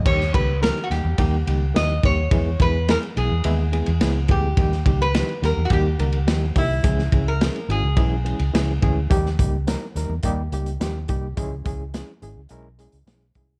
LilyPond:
<<
  \new Staff \with { instrumentName = "Resonator guitar played with a steel bar" } { \time 4/4 \key dis \phrygian \tempo 4 = 106 cis''8 b'8 ais'16. fis'32 g'4. dis''8 cis''8~ | cis''8 b'8 ais'8 gis'2 g'8~ | g'8. b'8. ais'16. fis'32 g'4. e'8~ | e'8. ais'8. gis'2 r8 |
r1 | r1 | }
  \new Staff \with { instrumentName = "Reed electric piano" } { \time 4/4 \key dis \phrygian <dis g ais dis' g'>8 <dis g ais dis' g'>8 <dis g ais dis' g'>8 <dis g ais dis' g'>8 <dis g ais dis' g'>8 <dis g ais dis' g'>8 <dis g ais dis' g'>8 <dis g ais dis' g'>8 | <e gis b e' gis'>8 <e gis b e' gis'>8 <e gis b e' gis'>8 <e gis b e' gis'>8 <e gis b e' gis'>8 <e gis b e' gis'>8 <e gis b e' gis'>8 <e gis b e' gis'>8 | <dis g ais dis' g'>8 <dis g ais dis' g'>8 <dis g ais dis' g'>8 <dis g ais dis' g'>8 <dis g ais dis' g'>8 <dis g ais dis' ais'>8 <dis g ais dis' g'>8 <dis g ais dis' g'>8 | <e gis cis' e' gis'>8 <e gis cis' e' gis'>8 <e gis cis' e' gis'>8 <e gis cis' e' fis'>8 <e gis cis' e' gis'>8 <e gis cis' e' gis'>8 <e gis cis' e' gis'>8 <e gis cis' e' gis'>8 |
<g ais dis' g'>8 <g ais dis' g'>8 <g ais dis' ais'>8 <g ais dis' ais'>8 <g ais dis' g'>8 <g ais dis' g'>8 <g ais dis' g'>8 <g ais dis' g'>8 | <gis cis' e' gis'>8 <gis cis' e' gis'>8 <gis cis' e' gis'>8 <gis cis' e' gis'>8 <gis cis' e' ais'>8 <gis cis' e' gis'>8 <gis cis' e' gis'>8 <gis cis' e' gis'>8 | }
  \new Staff \with { instrumentName = "Fingered electric bass" } { \clef bass \time 4/4 \key dis \phrygian dis,8 cis,8. r16 dis,16 e,16 dis,8 cis,8 dis,8 dis,8 | e,8 e,8. r16 b,,16 e,16 dis,8. e,16 cis,8 d,8 | dis,8 cis,8. r16 dis,16 e,16 dis,8 cis,8 dis,8 bis,,8 | cis,8 cis,8. r16 gis,,16 cis,16 b,,8. cis,16 cis,8 d,8 |
dis,8 cis,8. r16 dis,16 e,16 dis,8 cis,8 dis,8 bis,,8 | cis,8 cis,8. r16 gis,,16 cis,16 b,,8. cis,16 b,,8 bis,,8 | }
  \new DrumStaff \with { instrumentName = "Drums" } \drummode { \time 4/4 <cymc bd>16 sn16 <bd cymr>8 <cymr sn>16 cymr16 <cymr sn>8 <bd cymr>8 cymr8 <cymr sn>8 <bd cymr>8 | <bd cymr>8 <bd cymr>8 <cymr sn>16 cymr16 cymr8 cymr8 cymr16 cymr16 <cymr sn>8 <bd cymr>8 | <bd cymr>16 sn16 <bd cymr>8 <cymr sn>16 cymr16 <cymr sn>8 <bd cymr>8 cymr16 cymr16 <cymr sn>8 <hho bd cymr>8 | <hhp bd cymr>16 sn16 <bd cymr>8 <cymr sn>16 cymr16 cymr8 <bd cymr>8 cymr16 cymr16 <cymr sn>8 <bd cymr>8 |
<hh bd>16 sn16 <hh bd>8 <hh sn>8 <hh sn>8 <hh bd>8 hh16 hh16 <hh sn>8 <hh bd>8 | <hh bd>8 <hh bd>8 <hh sn>8 hh8 hh8 hh16 hh16 <hh sn>8 <hh bd>8 | }
>>